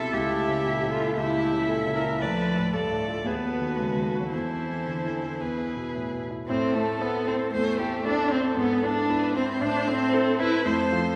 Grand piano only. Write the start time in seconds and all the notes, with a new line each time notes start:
Already playing: C2 B2 C3 A3 E4
0.13 C#2
0.31 A3
0.48 C#3
0.66 A#2
0.83 C#3
1.00 E4
1.17 C#2
1.34 A3
1.52 C#3
1.69 A#2
1.86 C#3
2.04 E4
2.22 D2
2.39 A3
2.57 A2
2.74 G2
2.91 A2
3.09 F4
3.26 D#2
3.43 B3
3.60 D#3
3.79 C#3
3.97 D#3
4.14 F#4
4.32 E2
4.50 C4
4.68 E3
4.86 D3
5.04 E3
5.23 E4
5.40 E2
5.58 B3
5.77 B2
5.95 A2
6.13 B2
6.31 E4
6.49 A2
6.75 C4 E4 A4
7.01 C4 E4 A4
7.27 C4 E4 A4
7.53 E2
7.80 C4 E4 A4
8.05 C4 E4 A4
8.31 C4 E4 A4
8.57 G#2
8.83 B3 E4 B4
9.09 B3 E4 B4
9.35 B3 E4 B4
9.61 A2
9.87 C4 E4 A4
10.13 C4 E4 A4
10.40 C4 E4 A4
10.65 F2
10.92 C4 F4 A4